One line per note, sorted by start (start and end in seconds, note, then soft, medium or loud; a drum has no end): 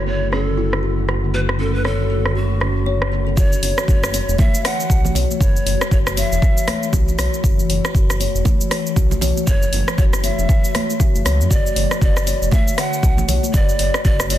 0.00 3.35 F#1 medium
0.00 3.33 D3 medium
0.00 3.33 A3 medium
0.00 3.33 F#4 medium
0.07 0.15 A4 medium
0.07 0.30 C#5 loud
0.07 shaker medium
0.22 shaker soft
0.32 0.40 C#4 loud
0.32 0.44 G#4 medium
0.32 cross-stick medium
0.32 shaker soft
0.44 1.04 A4 medium
0.44 shaker soft
0.57 0.72 E4 loud
0.57 shaker medium
0.73 cross-stick medium
0.73 shaker soft
0.83 0.97 F#4 medium
0.83 shaker soft
0.99 shaker soft
1.08 1.16 A4 medium
1.08 cross-stick medium
1.08 shaker medium
1.24 shaker soft
1.34 1.48 F#4 medium
1.34 1.40 B4 loud
1.49 cross-stick medium
1.49 shaker soft
1.59 1.67 C#4 medium
1.59 1.76 A4 medium
1.59 shaker medium
1.74 1.87 B4 medium
1.74 shaker soft
1.85 2.37 A4 loud
1.85 1.99 C#5 medium
1.85 cross-stick medium
1.85 shaker soft
2.00 shaker soft
2.10 2.18 A4 medium
2.10 shaker medium
2.25 cross-stick medium
2.25 shaker soft
2.35 2.50 F#4 medium
2.35 3.12 F#4 medium
2.35 shaker soft
2.51 shaker soft
2.61 2.69 C#4 medium
2.61 cross-stick medium
2.61 shaker medium
2.77 shaker soft
2.86 3.01 C#5 loud
2.86 shaker soft
3.02 cross-stick medium
3.02 shaker soft
3.12 3.20 A4 medium
3.12 shaker medium
3.27 3.37 A4 medium
3.27 shaker soft
3.37 3.55 F#1 loud
3.37 11.47 E3 medium
3.37 14.38 A3 medium
3.37 3.51 F#4 loud
3.37 11.47 F#4 medium
3.37 3.85 C#5 medium
3.37 kick loud
3.37 shaker medium
3.53 shaker medium
3.63 3.72 F#1 loud
3.63 3.77 C#5 medium
3.63 open hi-hat medium
3.63 shaker medium
3.78 cross-stick medium
3.78 shaker medium
3.88 4.20 F#1 medium
3.88 4.02 F#4 loud
3.88 4.40 C#5 medium
3.88 kick loud
3.88 shaker medium
4.04 cross-stick loud
4.04 shaker medium
4.13 4.27 C#5 loud
4.13 open hi-hat medium
4.13 shaker medium
4.29 4.35 E1 medium
4.29 shaker medium
4.38 4.53 B4 medium
4.38 4.66 E5 loud
4.38 kick loud
4.38 high conga loud
4.38 low conga loud
4.38 shaker medium
4.55 shaker medium
4.64 4.79 C#5 medium
4.64 5.15 F#5 loud
4.64 cross-stick loud
4.64 open hi-hat medium
4.64 shaker medium
4.80 shaker medium
4.90 5.07 B1 loud
4.90 5.04 F#4 loud
4.90 kick loud
4.90 shaker medium
5.05 high conga medium
5.05 low conga loud
5.05 shaker medium
5.15 5.25 B1 medium
5.15 5.29 C#5 loud
5.15 open hi-hat medium
5.15 low conga loud
5.15 shaker medium
5.31 high conga medium
5.31 shaker medium
5.41 5.58 F#1 loud
5.41 5.55 B4 loud
5.41 5.88 C#5 loud
5.41 kick loud
5.41 shaker medium
5.56 shaker medium
5.66 5.76 F#1 medium
5.66 5.80 C#5 medium
5.66 open hi-hat medium
5.66 shaker medium
5.81 cross-stick loud
5.81 shaker medium
5.91 6.23 F#1 medium
5.91 6.06 F#4 loud
5.91 5.98 C#5 loud
5.91 kick loud
5.91 shaker medium
6.07 cross-stick loud
6.07 shaker loud
6.17 6.30 C#5 loud
6.17 6.89 E5 loud
6.17 open hi-hat medium
6.17 shaker medium
6.32 6.38 E1 medium
6.32 shaker medium
6.42 6.56 B4 loud
6.42 kick loud
6.42 shaker medium
6.58 shaker loud
6.68 6.82 C#5 medium
6.68 cross-stick loud
6.68 open hi-hat medium
6.68 high conga loud
6.68 shaker medium
6.83 shaker medium
6.93 7.11 B1 loud
6.93 7.07 F#4 loud
6.93 kick loud
6.93 low conga loud
6.93 shaker loud
7.08 high conga medium
7.08 shaker medium
7.18 7.28 B1 medium
7.18 7.32 C#5 loud
7.18 cross-stick medium
7.18 open hi-hat medium
7.18 shaker medium
7.34 shaker medium
7.44 7.62 F#1 loud
7.44 7.57 F#4 loud
7.44 kick loud
7.44 shaker loud
7.59 shaker medium
7.69 7.79 F#1 loud
7.69 7.84 C#5 medium
7.69 open hi-hat medium
7.69 shaker medium
7.85 cross-stick loud
7.85 shaker medium
7.94 8.26 F#1 medium
7.94 8.09 F#4 loud
7.94 kick loud
7.94 shaker medium
8.10 cross-stick medium
8.10 shaker loud
8.20 8.34 C#5 loud
8.20 open hi-hat medium
8.20 shaker loud
8.35 8.42 E1 medium
8.35 shaker medium
8.45 8.60 B4 medium
8.45 kick loud
8.45 high conga loud
8.45 low conga loud
8.45 shaker medium
8.61 shaker loud
8.71 8.85 C#5 medium
8.71 cross-stick medium
8.71 open hi-hat medium
8.71 shaker medium
8.87 shaker medium
8.96 9.14 B1 loud
8.96 9.11 F#4 loud
8.96 kick loud
8.96 shaker loud
9.11 high conga medium
9.11 low conga loud
9.11 shaker medium
9.21 9.31 B1 medium
9.21 9.35 C#5 loud
9.21 open hi-hat medium
9.21 low conga loud
9.21 shaker loud
9.37 high conga medium
9.37 shaker medium
9.47 9.65 F#1 loud
9.47 9.62 B4 loud
9.47 9.95 C#5 loud
9.47 kick loud
9.47 shaker loud
9.62 shaker medium
9.72 9.82 F#1 loud
9.72 9.87 C#5 medium
9.72 open hi-hat medium
9.72 shaker medium
9.88 cross-stick medium
9.88 shaker medium
9.97 10.30 F#1 loud
9.97 10.12 F#4 loud
9.97 10.03 C#5 loud
9.97 kick loud
9.97 shaker medium
10.13 cross-stick medium
10.13 shaker loud
10.23 10.37 C#5 loud
10.23 11.21 E5 loud
10.23 open hi-hat medium
10.23 shaker medium
10.38 10.45 E1 medium
10.38 shaker medium
10.49 10.63 B4 loud
10.49 kick loud
10.49 shaker medium
10.64 shaker loud
10.74 10.89 C#5 medium
10.74 cross-stick medium
10.74 open hi-hat medium
10.74 high conga loud
10.74 shaker medium
10.90 shaker medium
11.00 11.14 F#4 loud
11.00 kick loud
11.00 low conga loud
11.00 shaker loud
11.15 11.21 F#1 medium
11.15 high conga medium
11.15 shaker medium
11.25 11.42 C#2 loud
11.25 11.39 C#5 loud
11.25 cross-stick medium
11.25 open hi-hat medium
11.25 shaker medium
11.40 11.47 F#2 medium
11.40 shaker medium
11.51 11.68 F#1 loud
11.51 14.38 D3 medium
11.51 11.64 F#4 loud
11.51 14.38 F#4 medium
11.51 11.98 D5 medium
11.51 kick loud
11.51 shaker medium
11.66 shaker medium
11.76 11.86 F#1 loud
11.76 11.90 C#5 medium
11.76 open hi-hat medium
11.76 shaker medium
11.91 cross-stick medium
11.91 shaker medium
12.01 12.33 F#1 medium
12.01 12.16 F#4 loud
12.01 12.53 D5 medium
12.01 kick loud
12.01 shaker medium
12.17 cross-stick medium
12.17 shaker medium
12.27 12.40 C#5 loud
12.27 open hi-hat medium
12.27 shaker medium
12.42 12.49 E1 medium
12.42 shaker medium
12.51 12.67 B4 medium
12.51 12.80 E5 loud
12.51 kick loud
12.51 high conga loud
12.51 low conga loud
12.51 shaker medium
12.68 shaker medium
12.77 12.92 C#5 medium
12.77 13.29 F#5 loud
12.77 cross-stick medium
12.77 open hi-hat medium
12.77 shaker medium
12.93 shaker medium
13.03 13.21 B1 loud
13.03 13.17 F#4 loud
13.03 kick loud
13.03 shaker loud
13.17 high conga medium
13.17 low conga loud
13.17 shaker medium
13.28 13.38 B1 medium
13.28 13.42 C#5 loud
13.28 open hi-hat medium
13.28 low conga loud
13.28 shaker medium
13.43 high conga medium
13.43 shaker medium
13.54 13.72 F#1 loud
13.54 13.68 B4 loud
13.54 14.01 D5 loud
13.54 kick loud
13.54 shaker medium
13.69 shaker soft
13.79 13.89 F#1 loud
13.79 13.94 C#5 medium
13.79 open hi-hat medium
13.79 shaker medium
13.94 cross-stick medium
13.94 shaker medium
14.05 14.36 F#1 medium
14.05 14.19 F#4 loud
14.05 14.28 D5 loud
14.05 kick loud
14.05 shaker medium
14.20 cross-stick medium
14.20 shaker medium
14.30 14.38 C#5 loud
14.30 14.38 D5 loud
14.30 open hi-hat medium
14.30 shaker medium